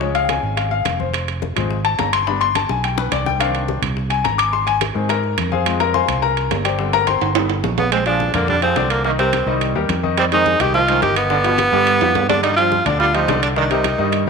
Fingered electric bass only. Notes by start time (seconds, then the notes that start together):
Already playing: C#2
0.43 G#1
0.86 F1
1.56 G#1
1.99 G1
2.69 B1
3.12 C2
3.82 C2
4.24 G#1
4.95 G#2
5.38 F2
6.08 C2
6.51 G1
7.21 G1
7.64 A#1
8.34 F2
8.76 C2
9.46 C2
9.75 D#2
9.89 F2
10.60 C2
11.02 G1
11.72 G2
12.01 F2
12.14 G2
12.85 D2
13.28 C2
13.99 G2
14.27 D#2